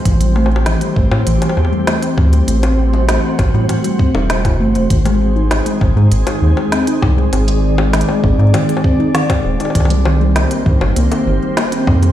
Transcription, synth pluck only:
0.06 0.20 E3 loud
0.21 0.32 G3 medium
0.36 0.47 A3 loud
0.51 0.62 C4 medium
0.66 0.81 E3 medium
0.81 0.92 G3 loud
0.96 1.08 A3 medium
1.12 1.23 C4 medium
1.27 1.38 E3 medium
1.42 1.49 G3 medium
1.57 1.71 E3 medium
1.72 1.83 G3 loud
1.87 2.02 A3 medium
2.03 2.09 C4 medium
2.18 2.32 E3 loud
2.33 2.44 G3 medium
2.48 2.59 A3 loud
2.63 2.74 C4 medium
2.78 2.93 E3 medium
2.93 3.05 G3 loud
3.09 3.20 A3 medium
3.24 3.35 C4 medium
3.39 3.50 E3 medium
3.54 3.61 G3 medium
3.69 3.84 E3 medium
3.84 3.95 G3 loud
4.00 4.11 C4 loud
4.15 4.21 G3 medium
4.30 4.41 G3 medium
4.45 4.56 E4 medium
4.60 4.74 A3 loud
4.75 4.90 A3 loud
4.90 5.05 D#3 medium
5.06 5.17 G#3 loud
5.21 5.32 C4 medium
5.36 5.47 D#4 medium
5.51 5.62 D#3 medium
5.66 5.73 G#3 medium
5.81 5.96 D#3 medium
5.96 6.08 G#3 loud
6.12 6.26 C4 medium
6.27 6.33 D#4 medium
6.42 6.56 D#3 loud
6.57 6.68 G#3 medium
6.72 6.83 C4 medium
6.87 6.99 D#4 medium
7.03 7.17 D#3 medium
7.18 7.29 G#3 loud
7.33 7.44 C4 medium
7.48 7.59 D#4 medium
7.63 7.74 D#3 medium
7.78 7.85 G#3 medium
7.93 8.08 D#3 medium
8.09 8.20 G#3 loud
8.24 8.38 C4 medium
8.39 8.46 D#4 medium
8.54 8.68 D#3 loud
8.69 8.80 G#3 medium
8.84 8.95 C4 loud
8.99 9.11 D#4 medium
9.15 9.29 D#3 medium
9.30 9.41 G#3 loud
9.45 9.56 C4 medium
9.60 9.71 D#4 medium
9.75 9.86 D#3 medium
9.90 9.97 G3 medium
10.06 10.20 D#3 medium
10.21 10.32 G3 loud
10.36 10.50 A#3 medium
10.51 10.58 C4 medium
10.66 10.81 D#3 medium
10.81 10.92 G3 medium
10.96 11.08 A#3 loud
11.12 11.23 C4 medium
11.27 11.41 D#3 medium
11.42 11.53 G3 loud
11.57 11.68 A#3 medium
11.72 11.83 C4 medium
11.87 11.98 D#3 medium
12.02 12.09 G3 medium

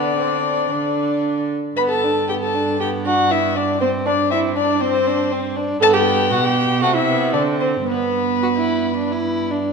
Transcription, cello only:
0.00 0.68 D3 soft
0.70 1.54 D3 soft
1.76 5.76 G2 soft
5.81 6.32 G2 medium
6.31 6.83 B2 medium
6.81 7.34 C3 medium
7.33 7.85 D3 medium
7.86 9.73 G2 soft

